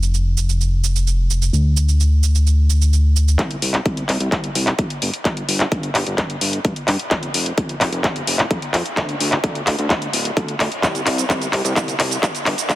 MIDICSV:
0, 0, Header, 1, 3, 480
1, 0, Start_track
1, 0, Tempo, 465116
1, 1580, Time_signature, 4, 2, 24, 8
1, 13161, End_track
2, 0, Start_track
2, 0, Title_t, "Analog synth bass"
2, 0, Program_c, 0, 38
2, 0, Note_on_c, 0, 29, 90
2, 1556, Note_off_c, 0, 29, 0
2, 1581, Note_on_c, 0, 38, 85
2, 3477, Note_off_c, 0, 38, 0
2, 3500, Note_on_c, 0, 36, 97
2, 3683, Note_off_c, 0, 36, 0
2, 3740, Note_on_c, 0, 36, 95
2, 3923, Note_off_c, 0, 36, 0
2, 3980, Note_on_c, 0, 36, 86
2, 4163, Note_off_c, 0, 36, 0
2, 4220, Note_on_c, 0, 36, 90
2, 4311, Note_off_c, 0, 36, 0
2, 4339, Note_on_c, 0, 36, 99
2, 4431, Note_off_c, 0, 36, 0
2, 4460, Note_on_c, 0, 36, 91
2, 4643, Note_off_c, 0, 36, 0
2, 4700, Note_on_c, 0, 36, 92
2, 4883, Note_off_c, 0, 36, 0
2, 4941, Note_on_c, 0, 31, 75
2, 5032, Note_off_c, 0, 31, 0
2, 5180, Note_on_c, 0, 31, 84
2, 5272, Note_off_c, 0, 31, 0
2, 5421, Note_on_c, 0, 31, 94
2, 5604, Note_off_c, 0, 31, 0
2, 5661, Note_on_c, 0, 31, 95
2, 5843, Note_off_c, 0, 31, 0
2, 5900, Note_on_c, 0, 31, 87
2, 6083, Note_off_c, 0, 31, 0
2, 6140, Note_on_c, 0, 31, 94
2, 6231, Note_off_c, 0, 31, 0
2, 6261, Note_on_c, 0, 31, 94
2, 6352, Note_off_c, 0, 31, 0
2, 6381, Note_on_c, 0, 31, 88
2, 6563, Note_off_c, 0, 31, 0
2, 6620, Note_on_c, 0, 31, 93
2, 6803, Note_off_c, 0, 31, 0
2, 6860, Note_on_c, 0, 43, 77
2, 6952, Note_off_c, 0, 43, 0
2, 7099, Note_on_c, 0, 43, 90
2, 7191, Note_off_c, 0, 43, 0
2, 7340, Note_on_c, 0, 29, 96
2, 7523, Note_off_c, 0, 29, 0
2, 7578, Note_on_c, 0, 29, 93
2, 7762, Note_off_c, 0, 29, 0
2, 7820, Note_on_c, 0, 29, 86
2, 8003, Note_off_c, 0, 29, 0
2, 8059, Note_on_c, 0, 29, 89
2, 8151, Note_off_c, 0, 29, 0
2, 8178, Note_on_c, 0, 29, 98
2, 8271, Note_off_c, 0, 29, 0
2, 8299, Note_on_c, 0, 29, 88
2, 8483, Note_off_c, 0, 29, 0
2, 8538, Note_on_c, 0, 29, 95
2, 8722, Note_off_c, 0, 29, 0
2, 8779, Note_on_c, 0, 41, 78
2, 8871, Note_off_c, 0, 41, 0
2, 9019, Note_on_c, 0, 41, 86
2, 9111, Note_off_c, 0, 41, 0
2, 9260, Note_on_c, 0, 38, 94
2, 9443, Note_off_c, 0, 38, 0
2, 9498, Note_on_c, 0, 38, 97
2, 9682, Note_off_c, 0, 38, 0
2, 9739, Note_on_c, 0, 38, 89
2, 9923, Note_off_c, 0, 38, 0
2, 9979, Note_on_c, 0, 38, 92
2, 10071, Note_off_c, 0, 38, 0
2, 10098, Note_on_c, 0, 38, 101
2, 10191, Note_off_c, 0, 38, 0
2, 10220, Note_on_c, 0, 38, 87
2, 10403, Note_off_c, 0, 38, 0
2, 10459, Note_on_c, 0, 26, 89
2, 10643, Note_off_c, 0, 26, 0
2, 10700, Note_on_c, 0, 38, 90
2, 10883, Note_off_c, 0, 38, 0
2, 10940, Note_on_c, 0, 38, 92
2, 11031, Note_off_c, 0, 38, 0
2, 11180, Note_on_c, 0, 36, 99
2, 11363, Note_off_c, 0, 36, 0
2, 11420, Note_on_c, 0, 36, 98
2, 11603, Note_off_c, 0, 36, 0
2, 11660, Note_on_c, 0, 36, 88
2, 11843, Note_off_c, 0, 36, 0
2, 11901, Note_on_c, 0, 36, 98
2, 11992, Note_off_c, 0, 36, 0
2, 12021, Note_on_c, 0, 36, 101
2, 12112, Note_off_c, 0, 36, 0
2, 12140, Note_on_c, 0, 36, 90
2, 12323, Note_off_c, 0, 36, 0
2, 12380, Note_on_c, 0, 36, 96
2, 12563, Note_off_c, 0, 36, 0
2, 12621, Note_on_c, 0, 31, 79
2, 12712, Note_off_c, 0, 31, 0
2, 12859, Note_on_c, 0, 31, 86
2, 12951, Note_off_c, 0, 31, 0
2, 13101, Note_on_c, 0, 31, 98
2, 13161, Note_off_c, 0, 31, 0
2, 13161, End_track
3, 0, Start_track
3, 0, Title_t, "Drums"
3, 28, Note_on_c, 9, 82, 38
3, 131, Note_off_c, 9, 82, 0
3, 148, Note_on_c, 9, 82, 28
3, 251, Note_off_c, 9, 82, 0
3, 388, Note_on_c, 9, 82, 68
3, 491, Note_off_c, 9, 82, 0
3, 509, Note_on_c, 9, 82, 40
3, 612, Note_off_c, 9, 82, 0
3, 629, Note_on_c, 9, 82, 29
3, 733, Note_off_c, 9, 82, 0
3, 869, Note_on_c, 9, 82, 71
3, 972, Note_off_c, 9, 82, 0
3, 989, Note_on_c, 9, 82, 42
3, 1092, Note_off_c, 9, 82, 0
3, 1109, Note_on_c, 9, 82, 28
3, 1212, Note_off_c, 9, 82, 0
3, 1348, Note_on_c, 9, 82, 72
3, 1452, Note_off_c, 9, 82, 0
3, 1468, Note_on_c, 9, 82, 41
3, 1571, Note_off_c, 9, 82, 0
3, 1587, Note_on_c, 9, 82, 30
3, 1690, Note_off_c, 9, 82, 0
3, 1826, Note_on_c, 9, 82, 73
3, 1930, Note_off_c, 9, 82, 0
3, 1947, Note_on_c, 9, 82, 38
3, 2050, Note_off_c, 9, 82, 0
3, 2068, Note_on_c, 9, 82, 30
3, 2171, Note_off_c, 9, 82, 0
3, 2307, Note_on_c, 9, 82, 69
3, 2410, Note_off_c, 9, 82, 0
3, 2428, Note_on_c, 9, 82, 39
3, 2531, Note_off_c, 9, 82, 0
3, 2547, Note_on_c, 9, 82, 30
3, 2651, Note_off_c, 9, 82, 0
3, 2787, Note_on_c, 9, 82, 70
3, 2890, Note_off_c, 9, 82, 0
3, 2907, Note_on_c, 9, 82, 42
3, 3010, Note_off_c, 9, 82, 0
3, 3027, Note_on_c, 9, 82, 28
3, 3131, Note_off_c, 9, 82, 0
3, 3266, Note_on_c, 9, 82, 69
3, 3369, Note_off_c, 9, 82, 0
3, 3387, Note_on_c, 9, 82, 44
3, 3490, Note_off_c, 9, 82, 0
3, 3499, Note_on_c, 9, 39, 46
3, 3499, Note_on_c, 9, 42, 67
3, 3500, Note_on_c, 9, 36, 118
3, 3602, Note_off_c, 9, 39, 0
3, 3602, Note_off_c, 9, 42, 0
3, 3603, Note_off_c, 9, 36, 0
3, 3619, Note_on_c, 9, 42, 39
3, 3722, Note_off_c, 9, 42, 0
3, 3738, Note_on_c, 9, 46, 103
3, 3841, Note_off_c, 9, 46, 0
3, 3859, Note_on_c, 9, 39, 41
3, 3859, Note_on_c, 9, 42, 39
3, 3962, Note_off_c, 9, 39, 0
3, 3962, Note_off_c, 9, 42, 0
3, 3979, Note_on_c, 9, 42, 60
3, 3980, Note_on_c, 9, 36, 113
3, 4082, Note_off_c, 9, 42, 0
3, 4083, Note_off_c, 9, 36, 0
3, 4099, Note_on_c, 9, 42, 39
3, 4202, Note_off_c, 9, 42, 0
3, 4219, Note_on_c, 9, 39, 47
3, 4219, Note_on_c, 9, 46, 84
3, 4322, Note_off_c, 9, 39, 0
3, 4322, Note_off_c, 9, 46, 0
3, 4339, Note_on_c, 9, 42, 38
3, 4442, Note_off_c, 9, 42, 0
3, 4460, Note_on_c, 9, 36, 112
3, 4460, Note_on_c, 9, 39, 46
3, 4460, Note_on_c, 9, 42, 65
3, 4563, Note_off_c, 9, 36, 0
3, 4563, Note_off_c, 9, 39, 0
3, 4563, Note_off_c, 9, 42, 0
3, 4579, Note_on_c, 9, 42, 39
3, 4682, Note_off_c, 9, 42, 0
3, 4699, Note_on_c, 9, 46, 97
3, 4802, Note_off_c, 9, 46, 0
3, 4820, Note_on_c, 9, 39, 45
3, 4820, Note_on_c, 9, 42, 39
3, 4923, Note_off_c, 9, 39, 0
3, 4923, Note_off_c, 9, 42, 0
3, 4939, Note_on_c, 9, 42, 62
3, 4940, Note_on_c, 9, 36, 114
3, 5042, Note_off_c, 9, 42, 0
3, 5044, Note_off_c, 9, 36, 0
3, 5060, Note_on_c, 9, 42, 40
3, 5163, Note_off_c, 9, 42, 0
3, 5180, Note_on_c, 9, 46, 91
3, 5283, Note_off_c, 9, 46, 0
3, 5300, Note_on_c, 9, 42, 42
3, 5403, Note_off_c, 9, 42, 0
3, 5420, Note_on_c, 9, 36, 117
3, 5420, Note_on_c, 9, 39, 49
3, 5420, Note_on_c, 9, 42, 66
3, 5524, Note_off_c, 9, 36, 0
3, 5524, Note_off_c, 9, 39, 0
3, 5524, Note_off_c, 9, 42, 0
3, 5541, Note_on_c, 9, 42, 38
3, 5645, Note_off_c, 9, 42, 0
3, 5662, Note_on_c, 9, 46, 106
3, 5765, Note_off_c, 9, 46, 0
3, 5781, Note_on_c, 9, 39, 45
3, 5781, Note_on_c, 9, 42, 36
3, 5885, Note_off_c, 9, 39, 0
3, 5885, Note_off_c, 9, 42, 0
3, 5900, Note_on_c, 9, 36, 120
3, 5900, Note_on_c, 9, 42, 61
3, 6004, Note_off_c, 9, 36, 0
3, 6004, Note_off_c, 9, 42, 0
3, 6020, Note_on_c, 9, 42, 35
3, 6123, Note_off_c, 9, 42, 0
3, 6139, Note_on_c, 9, 39, 54
3, 6139, Note_on_c, 9, 46, 94
3, 6243, Note_off_c, 9, 39, 0
3, 6243, Note_off_c, 9, 46, 0
3, 6260, Note_on_c, 9, 42, 38
3, 6363, Note_off_c, 9, 42, 0
3, 6379, Note_on_c, 9, 39, 54
3, 6379, Note_on_c, 9, 42, 62
3, 6380, Note_on_c, 9, 36, 116
3, 6482, Note_off_c, 9, 39, 0
3, 6482, Note_off_c, 9, 42, 0
3, 6484, Note_off_c, 9, 36, 0
3, 6500, Note_on_c, 9, 42, 38
3, 6603, Note_off_c, 9, 42, 0
3, 6618, Note_on_c, 9, 46, 103
3, 6722, Note_off_c, 9, 46, 0
3, 6740, Note_on_c, 9, 42, 39
3, 6843, Note_off_c, 9, 42, 0
3, 6859, Note_on_c, 9, 42, 63
3, 6860, Note_on_c, 9, 36, 114
3, 6962, Note_off_c, 9, 42, 0
3, 6963, Note_off_c, 9, 36, 0
3, 6979, Note_on_c, 9, 42, 37
3, 7082, Note_off_c, 9, 42, 0
3, 7098, Note_on_c, 9, 39, 58
3, 7098, Note_on_c, 9, 46, 96
3, 7201, Note_off_c, 9, 39, 0
3, 7201, Note_off_c, 9, 46, 0
3, 7218, Note_on_c, 9, 42, 39
3, 7321, Note_off_c, 9, 42, 0
3, 7337, Note_on_c, 9, 39, 59
3, 7337, Note_on_c, 9, 42, 65
3, 7340, Note_on_c, 9, 36, 117
3, 7441, Note_off_c, 9, 39, 0
3, 7441, Note_off_c, 9, 42, 0
3, 7443, Note_off_c, 9, 36, 0
3, 7459, Note_on_c, 9, 42, 37
3, 7562, Note_off_c, 9, 42, 0
3, 7577, Note_on_c, 9, 46, 108
3, 7681, Note_off_c, 9, 46, 0
3, 7699, Note_on_c, 9, 42, 36
3, 7802, Note_off_c, 9, 42, 0
3, 7818, Note_on_c, 9, 42, 61
3, 7819, Note_on_c, 9, 36, 119
3, 7922, Note_off_c, 9, 42, 0
3, 7923, Note_off_c, 9, 36, 0
3, 7939, Note_on_c, 9, 42, 34
3, 8042, Note_off_c, 9, 42, 0
3, 8059, Note_on_c, 9, 39, 61
3, 8059, Note_on_c, 9, 46, 94
3, 8162, Note_off_c, 9, 39, 0
3, 8162, Note_off_c, 9, 46, 0
3, 8179, Note_on_c, 9, 42, 36
3, 8282, Note_off_c, 9, 42, 0
3, 8299, Note_on_c, 9, 36, 119
3, 8299, Note_on_c, 9, 39, 60
3, 8299, Note_on_c, 9, 42, 58
3, 8402, Note_off_c, 9, 36, 0
3, 8402, Note_off_c, 9, 39, 0
3, 8402, Note_off_c, 9, 42, 0
3, 8420, Note_on_c, 9, 42, 38
3, 8523, Note_off_c, 9, 42, 0
3, 8539, Note_on_c, 9, 46, 106
3, 8642, Note_off_c, 9, 46, 0
3, 8660, Note_on_c, 9, 39, 56
3, 8660, Note_on_c, 9, 42, 38
3, 8763, Note_off_c, 9, 39, 0
3, 8763, Note_off_c, 9, 42, 0
3, 8779, Note_on_c, 9, 36, 113
3, 8779, Note_on_c, 9, 42, 64
3, 8882, Note_off_c, 9, 36, 0
3, 8882, Note_off_c, 9, 42, 0
3, 8899, Note_on_c, 9, 42, 38
3, 9002, Note_off_c, 9, 42, 0
3, 9019, Note_on_c, 9, 39, 62
3, 9019, Note_on_c, 9, 46, 92
3, 9122, Note_off_c, 9, 39, 0
3, 9122, Note_off_c, 9, 46, 0
3, 9139, Note_on_c, 9, 42, 38
3, 9242, Note_off_c, 9, 42, 0
3, 9259, Note_on_c, 9, 36, 114
3, 9259, Note_on_c, 9, 39, 66
3, 9259, Note_on_c, 9, 42, 60
3, 9362, Note_off_c, 9, 36, 0
3, 9362, Note_off_c, 9, 39, 0
3, 9362, Note_off_c, 9, 42, 0
3, 9379, Note_on_c, 9, 42, 36
3, 9482, Note_off_c, 9, 42, 0
3, 9499, Note_on_c, 9, 46, 105
3, 9603, Note_off_c, 9, 46, 0
3, 9619, Note_on_c, 9, 39, 53
3, 9619, Note_on_c, 9, 42, 37
3, 9722, Note_off_c, 9, 39, 0
3, 9722, Note_off_c, 9, 42, 0
3, 9739, Note_on_c, 9, 36, 122
3, 9739, Note_on_c, 9, 42, 60
3, 9842, Note_off_c, 9, 36, 0
3, 9842, Note_off_c, 9, 42, 0
3, 9860, Note_on_c, 9, 42, 36
3, 9963, Note_off_c, 9, 42, 0
3, 9978, Note_on_c, 9, 39, 68
3, 9978, Note_on_c, 9, 46, 96
3, 10082, Note_off_c, 9, 39, 0
3, 10082, Note_off_c, 9, 46, 0
3, 10099, Note_on_c, 9, 42, 35
3, 10202, Note_off_c, 9, 42, 0
3, 10219, Note_on_c, 9, 36, 122
3, 10219, Note_on_c, 9, 39, 68
3, 10219, Note_on_c, 9, 42, 60
3, 10322, Note_off_c, 9, 39, 0
3, 10322, Note_off_c, 9, 42, 0
3, 10323, Note_off_c, 9, 36, 0
3, 10339, Note_on_c, 9, 42, 37
3, 10442, Note_off_c, 9, 42, 0
3, 10459, Note_on_c, 9, 46, 104
3, 10562, Note_off_c, 9, 46, 0
3, 10580, Note_on_c, 9, 42, 38
3, 10683, Note_off_c, 9, 42, 0
3, 10700, Note_on_c, 9, 36, 115
3, 10700, Note_on_c, 9, 42, 59
3, 10803, Note_off_c, 9, 36, 0
3, 10803, Note_off_c, 9, 42, 0
3, 10820, Note_on_c, 9, 42, 36
3, 10923, Note_off_c, 9, 42, 0
3, 10940, Note_on_c, 9, 39, 72
3, 10940, Note_on_c, 9, 46, 91
3, 11044, Note_off_c, 9, 39, 0
3, 11044, Note_off_c, 9, 46, 0
3, 11060, Note_on_c, 9, 42, 39
3, 11163, Note_off_c, 9, 42, 0
3, 11180, Note_on_c, 9, 36, 117
3, 11181, Note_on_c, 9, 39, 73
3, 11181, Note_on_c, 9, 42, 59
3, 11189, Note_on_c, 9, 82, 53
3, 11283, Note_off_c, 9, 36, 0
3, 11284, Note_off_c, 9, 39, 0
3, 11284, Note_off_c, 9, 42, 0
3, 11292, Note_off_c, 9, 82, 0
3, 11300, Note_on_c, 9, 42, 38
3, 11308, Note_on_c, 9, 82, 32
3, 11404, Note_off_c, 9, 42, 0
3, 11411, Note_off_c, 9, 82, 0
3, 11420, Note_on_c, 9, 39, 73
3, 11420, Note_on_c, 9, 46, 107
3, 11523, Note_off_c, 9, 39, 0
3, 11523, Note_off_c, 9, 46, 0
3, 11540, Note_on_c, 9, 42, 35
3, 11548, Note_on_c, 9, 82, 64
3, 11643, Note_off_c, 9, 42, 0
3, 11651, Note_off_c, 9, 82, 0
3, 11660, Note_on_c, 9, 36, 117
3, 11661, Note_on_c, 9, 39, 72
3, 11661, Note_on_c, 9, 42, 61
3, 11669, Note_on_c, 9, 82, 52
3, 11763, Note_off_c, 9, 36, 0
3, 11764, Note_off_c, 9, 39, 0
3, 11764, Note_off_c, 9, 42, 0
3, 11772, Note_off_c, 9, 82, 0
3, 11781, Note_on_c, 9, 42, 36
3, 11789, Note_on_c, 9, 82, 31
3, 11884, Note_off_c, 9, 42, 0
3, 11892, Note_off_c, 9, 82, 0
3, 11900, Note_on_c, 9, 39, 75
3, 11900, Note_on_c, 9, 46, 93
3, 12003, Note_off_c, 9, 39, 0
3, 12003, Note_off_c, 9, 46, 0
3, 12020, Note_on_c, 9, 42, 36
3, 12028, Note_on_c, 9, 82, 66
3, 12123, Note_off_c, 9, 42, 0
3, 12131, Note_off_c, 9, 82, 0
3, 12140, Note_on_c, 9, 36, 122
3, 12141, Note_on_c, 9, 39, 75
3, 12141, Note_on_c, 9, 42, 63
3, 12149, Note_on_c, 9, 82, 55
3, 12243, Note_off_c, 9, 36, 0
3, 12244, Note_off_c, 9, 39, 0
3, 12244, Note_off_c, 9, 42, 0
3, 12252, Note_off_c, 9, 82, 0
3, 12261, Note_on_c, 9, 42, 37
3, 12269, Note_on_c, 9, 82, 34
3, 12365, Note_off_c, 9, 42, 0
3, 12372, Note_off_c, 9, 82, 0
3, 12381, Note_on_c, 9, 39, 79
3, 12381, Note_on_c, 9, 46, 105
3, 12484, Note_off_c, 9, 39, 0
3, 12484, Note_off_c, 9, 46, 0
3, 12501, Note_on_c, 9, 42, 38
3, 12508, Note_on_c, 9, 82, 71
3, 12604, Note_off_c, 9, 42, 0
3, 12612, Note_off_c, 9, 82, 0
3, 12621, Note_on_c, 9, 36, 115
3, 12621, Note_on_c, 9, 39, 79
3, 12621, Note_on_c, 9, 42, 64
3, 12629, Note_on_c, 9, 82, 53
3, 12724, Note_off_c, 9, 36, 0
3, 12724, Note_off_c, 9, 39, 0
3, 12724, Note_off_c, 9, 42, 0
3, 12732, Note_off_c, 9, 82, 0
3, 12742, Note_on_c, 9, 42, 36
3, 12750, Note_on_c, 9, 82, 33
3, 12845, Note_off_c, 9, 42, 0
3, 12853, Note_off_c, 9, 82, 0
3, 12862, Note_on_c, 9, 39, 79
3, 12862, Note_on_c, 9, 46, 89
3, 12965, Note_off_c, 9, 39, 0
3, 12965, Note_off_c, 9, 46, 0
3, 12983, Note_on_c, 9, 42, 40
3, 12991, Note_on_c, 9, 82, 68
3, 13086, Note_off_c, 9, 42, 0
3, 13094, Note_off_c, 9, 82, 0
3, 13101, Note_on_c, 9, 36, 110
3, 13102, Note_on_c, 9, 39, 84
3, 13102, Note_on_c, 9, 42, 62
3, 13110, Note_on_c, 9, 82, 58
3, 13161, Note_off_c, 9, 36, 0
3, 13161, Note_off_c, 9, 39, 0
3, 13161, Note_off_c, 9, 42, 0
3, 13161, Note_off_c, 9, 82, 0
3, 13161, End_track
0, 0, End_of_file